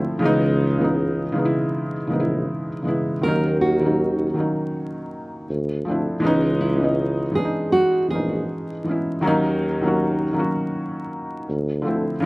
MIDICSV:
0, 0, Header, 1, 4, 480
1, 0, Start_track
1, 0, Tempo, 750000
1, 143, Time_signature, 4, 2, 24, 8
1, 7844, End_track
2, 0, Start_track
2, 0, Title_t, "Nylon-string guitar"
2, 0, Program_c, 0, 24
2, 2069, Note_on_c, 0, 70, 93
2, 2282, Note_off_c, 0, 70, 0
2, 2311, Note_on_c, 0, 66, 72
2, 3616, Note_off_c, 0, 66, 0
2, 4229, Note_on_c, 0, 64, 63
2, 4680, Note_off_c, 0, 64, 0
2, 4706, Note_on_c, 0, 68, 88
2, 4920, Note_off_c, 0, 68, 0
2, 4943, Note_on_c, 0, 66, 83
2, 5159, Note_off_c, 0, 66, 0
2, 5187, Note_on_c, 0, 68, 68
2, 5879, Note_off_c, 0, 68, 0
2, 7844, End_track
3, 0, Start_track
3, 0, Title_t, "Felt piano"
3, 0, Program_c, 1, 0
3, 0, Control_c, 1, 64, 127
3, 0, Note_on_c, 1, 50, 67
3, 0, Note_on_c, 1, 53, 73
3, 0, Note_on_c, 1, 57, 74
3, 0, Note_on_c, 1, 60, 74
3, 0, Note_on_c, 1, 64, 82
3, 85, Note_off_c, 1, 50, 0
3, 89, Note_off_c, 1, 53, 0
3, 95, Note_off_c, 1, 57, 0
3, 100, Note_off_c, 1, 60, 0
3, 105, Note_off_c, 1, 64, 0
3, 121, Note_on_c, 1, 49, 109
3, 132, Note_on_c, 1, 52, 99
3, 142, Note_on_c, 1, 56, 102
3, 150, Control_c, 1, 64, 0
3, 154, Note_on_c, 1, 59, 100
3, 162, Note_on_c, 1, 63, 126
3, 247, Control_c, 1, 64, 127
3, 404, Note_off_c, 1, 49, 0
3, 410, Note_off_c, 1, 52, 0
3, 415, Note_off_c, 1, 56, 0
3, 421, Note_off_c, 1, 59, 0
3, 425, Note_off_c, 1, 63, 0
3, 497, Note_on_c, 1, 49, 82
3, 508, Note_on_c, 1, 52, 78
3, 519, Note_on_c, 1, 56, 82
3, 526, Note_on_c, 1, 59, 81
3, 540, Note_on_c, 1, 63, 95
3, 773, Note_off_c, 1, 49, 0
3, 778, Note_off_c, 1, 52, 0
3, 784, Note_off_c, 1, 56, 0
3, 787, Note_off_c, 1, 59, 0
3, 794, Note_off_c, 1, 63, 0
3, 846, Note_on_c, 1, 49, 100
3, 856, Note_on_c, 1, 52, 81
3, 866, Note_on_c, 1, 56, 75
3, 875, Note_on_c, 1, 59, 73
3, 887, Note_on_c, 1, 63, 77
3, 922, Note_off_c, 1, 63, 0
3, 929, Note_on_c, 1, 64, 94
3, 1227, Note_off_c, 1, 49, 0
3, 1232, Note_off_c, 1, 52, 0
3, 1237, Note_off_c, 1, 56, 0
3, 1242, Note_off_c, 1, 59, 0
3, 1269, Note_off_c, 1, 64, 0
3, 1326, Note_on_c, 1, 49, 85
3, 1337, Note_on_c, 1, 52, 69
3, 1346, Note_on_c, 1, 56, 76
3, 1355, Note_on_c, 1, 59, 73
3, 1366, Note_on_c, 1, 63, 73
3, 1401, Note_off_c, 1, 63, 0
3, 1407, Note_on_c, 1, 64, 95
3, 1707, Note_off_c, 1, 49, 0
3, 1713, Note_off_c, 1, 52, 0
3, 1717, Note_off_c, 1, 56, 0
3, 1722, Note_off_c, 1, 59, 0
3, 1748, Note_off_c, 1, 64, 0
3, 1806, Note_on_c, 1, 49, 70
3, 1817, Note_on_c, 1, 52, 62
3, 1825, Note_on_c, 1, 56, 73
3, 1836, Note_on_c, 1, 59, 75
3, 1846, Note_on_c, 1, 64, 88
3, 2001, Note_off_c, 1, 49, 0
3, 2006, Note_off_c, 1, 52, 0
3, 2011, Note_off_c, 1, 56, 0
3, 2016, Note_off_c, 1, 59, 0
3, 2021, Note_off_c, 1, 64, 0
3, 2058, Note_on_c, 1, 51, 84
3, 2068, Note_on_c, 1, 54, 79
3, 2071, Control_c, 1, 64, 0
3, 2078, Note_on_c, 1, 58, 77
3, 2087, Note_on_c, 1, 61, 77
3, 2097, Note_on_c, 1, 63, 97
3, 2178, Control_c, 1, 64, 127
3, 2333, Note_off_c, 1, 51, 0
3, 2338, Note_off_c, 1, 54, 0
3, 2343, Note_off_c, 1, 58, 0
3, 2347, Note_off_c, 1, 61, 0
3, 2352, Note_off_c, 1, 63, 0
3, 2433, Note_on_c, 1, 51, 69
3, 2443, Note_on_c, 1, 54, 66
3, 2454, Note_on_c, 1, 58, 63
3, 2463, Note_on_c, 1, 61, 64
3, 2471, Note_on_c, 1, 63, 81
3, 2700, Note_off_c, 1, 51, 0
3, 2706, Note_off_c, 1, 54, 0
3, 2711, Note_off_c, 1, 58, 0
3, 2716, Note_off_c, 1, 61, 0
3, 2720, Note_off_c, 1, 63, 0
3, 2778, Note_on_c, 1, 51, 70
3, 2787, Note_on_c, 1, 54, 67
3, 2796, Note_on_c, 1, 58, 61
3, 2807, Note_on_c, 1, 61, 67
3, 2816, Note_on_c, 1, 63, 74
3, 3497, Note_off_c, 1, 51, 0
3, 3502, Note_off_c, 1, 54, 0
3, 3507, Note_off_c, 1, 58, 0
3, 3511, Control_c, 1, 64, 0
3, 3512, Note_off_c, 1, 61, 0
3, 3516, Note_off_c, 1, 63, 0
3, 3624, Control_c, 1, 64, 127
3, 3743, Note_on_c, 1, 53, 74
3, 3753, Note_on_c, 1, 57, 60
3, 3762, Note_on_c, 1, 60, 66
3, 3772, Note_on_c, 1, 62, 72
3, 3783, Note_on_c, 1, 64, 78
3, 3930, Note_off_c, 1, 53, 0
3, 3934, Note_off_c, 1, 57, 0
3, 3939, Note_off_c, 1, 60, 0
3, 3944, Note_off_c, 1, 62, 0
3, 3950, Note_off_c, 1, 64, 0
3, 3968, Note_on_c, 1, 52, 110
3, 3979, Note_on_c, 1, 56, 108
3, 3989, Note_on_c, 1, 59, 98
3, 3990, Control_c, 1, 64, 0
3, 3999, Note_on_c, 1, 61, 96
3, 4010, Note_on_c, 1, 63, 127
3, 4092, Control_c, 1, 64, 127
3, 4248, Note_off_c, 1, 52, 0
3, 4253, Note_off_c, 1, 56, 0
3, 4258, Note_off_c, 1, 59, 0
3, 4263, Note_off_c, 1, 61, 0
3, 4269, Note_off_c, 1, 63, 0
3, 4337, Note_on_c, 1, 52, 73
3, 4349, Note_on_c, 1, 56, 73
3, 4359, Note_on_c, 1, 59, 66
3, 4368, Note_on_c, 1, 61, 69
3, 4379, Note_on_c, 1, 75, 77
3, 4613, Note_off_c, 1, 52, 0
3, 4618, Note_off_c, 1, 56, 0
3, 4624, Note_off_c, 1, 59, 0
3, 4628, Note_off_c, 1, 61, 0
3, 4633, Note_off_c, 1, 75, 0
3, 4682, Note_on_c, 1, 52, 73
3, 4694, Note_on_c, 1, 56, 61
3, 4705, Note_on_c, 1, 59, 64
3, 4714, Note_on_c, 1, 61, 61
3, 4725, Note_on_c, 1, 62, 59
3, 4760, Note_off_c, 1, 62, 0
3, 4767, Note_on_c, 1, 63, 78
3, 5065, Note_off_c, 1, 52, 0
3, 5071, Note_off_c, 1, 56, 0
3, 5077, Note_off_c, 1, 59, 0
3, 5081, Note_off_c, 1, 61, 0
3, 5108, Note_off_c, 1, 63, 0
3, 5174, Note_on_c, 1, 52, 65
3, 5184, Note_on_c, 1, 56, 63
3, 5197, Note_on_c, 1, 59, 62
3, 5205, Note_on_c, 1, 61, 61
3, 5218, Note_on_c, 1, 63, 75
3, 5551, Note_off_c, 1, 52, 0
3, 5556, Note_off_c, 1, 56, 0
3, 5563, Note_off_c, 1, 59, 0
3, 5567, Note_off_c, 1, 61, 0
3, 5573, Note_off_c, 1, 63, 0
3, 5659, Note_on_c, 1, 52, 73
3, 5672, Note_on_c, 1, 56, 61
3, 5680, Note_on_c, 1, 59, 58
3, 5688, Note_on_c, 1, 61, 71
3, 5700, Note_on_c, 1, 64, 78
3, 5848, Note_off_c, 1, 52, 0
3, 5854, Note_off_c, 1, 56, 0
3, 5858, Note_off_c, 1, 59, 0
3, 5862, Note_off_c, 1, 61, 0
3, 5868, Note_off_c, 1, 64, 0
3, 5895, Note_on_c, 1, 51, 109
3, 5903, Note_on_c, 1, 54, 110
3, 5912, Control_c, 1, 64, 0
3, 5914, Note_on_c, 1, 58, 106
3, 5925, Note_on_c, 1, 61, 99
3, 5934, Note_on_c, 1, 63, 122
3, 6013, Control_c, 1, 64, 127
3, 6171, Note_off_c, 1, 51, 0
3, 6175, Note_off_c, 1, 54, 0
3, 6181, Note_off_c, 1, 58, 0
3, 6186, Note_off_c, 1, 61, 0
3, 6191, Note_off_c, 1, 63, 0
3, 6280, Note_on_c, 1, 51, 87
3, 6291, Note_on_c, 1, 54, 86
3, 6300, Note_on_c, 1, 58, 82
3, 6309, Note_on_c, 1, 61, 78
3, 6320, Note_on_c, 1, 66, 88
3, 6544, Note_off_c, 1, 51, 0
3, 6550, Note_off_c, 1, 54, 0
3, 6554, Note_off_c, 1, 58, 0
3, 6558, Note_off_c, 1, 61, 0
3, 6564, Note_off_c, 1, 66, 0
3, 6610, Note_on_c, 1, 51, 78
3, 6620, Note_on_c, 1, 54, 79
3, 6628, Note_on_c, 1, 58, 68
3, 6640, Note_on_c, 1, 61, 80
3, 6651, Note_on_c, 1, 66, 89
3, 7334, Note_off_c, 1, 51, 0
3, 7339, Note_off_c, 1, 54, 0
3, 7342, Note_off_c, 1, 58, 0
3, 7349, Note_off_c, 1, 61, 0
3, 7352, Control_c, 1, 64, 0
3, 7354, Note_off_c, 1, 66, 0
3, 7465, Control_c, 1, 64, 127
3, 7564, Note_on_c, 1, 50, 88
3, 7572, Note_on_c, 1, 53, 70
3, 7582, Note_on_c, 1, 57, 75
3, 7593, Note_on_c, 1, 60, 79
3, 7602, Note_on_c, 1, 64, 79
3, 7760, Note_off_c, 1, 50, 0
3, 7764, Note_off_c, 1, 53, 0
3, 7769, Note_off_c, 1, 57, 0
3, 7774, Note_off_c, 1, 60, 0
3, 7779, Note_off_c, 1, 64, 0
3, 7809, Note_on_c, 1, 49, 115
3, 7821, Note_on_c, 1, 52, 104
3, 7832, Control_c, 1, 64, 0
3, 7844, Note_off_c, 1, 49, 0
3, 7844, Note_off_c, 1, 52, 0
3, 7844, End_track
4, 0, Start_track
4, 0, Title_t, "Tuba"
4, 0, Program_c, 2, 58
4, 153, Note_on_c, 2, 37, 112
4, 977, Note_off_c, 2, 37, 0
4, 1353, Note_on_c, 2, 34, 90
4, 1576, Note_off_c, 2, 34, 0
4, 2075, Note_on_c, 2, 39, 108
4, 2898, Note_off_c, 2, 39, 0
4, 3514, Note_on_c, 2, 38, 100
4, 3736, Note_off_c, 2, 38, 0
4, 3751, Note_on_c, 2, 38, 89
4, 3875, Note_off_c, 2, 38, 0
4, 3992, Note_on_c, 2, 37, 110
4, 4816, Note_off_c, 2, 37, 0
4, 5191, Note_on_c, 2, 34, 87
4, 5415, Note_off_c, 2, 34, 0
4, 5913, Note_on_c, 2, 39, 100
4, 6737, Note_off_c, 2, 39, 0
4, 7350, Note_on_c, 2, 38, 109
4, 7574, Note_off_c, 2, 38, 0
4, 7591, Note_on_c, 2, 38, 82
4, 7715, Note_off_c, 2, 38, 0
4, 7844, End_track
0, 0, End_of_file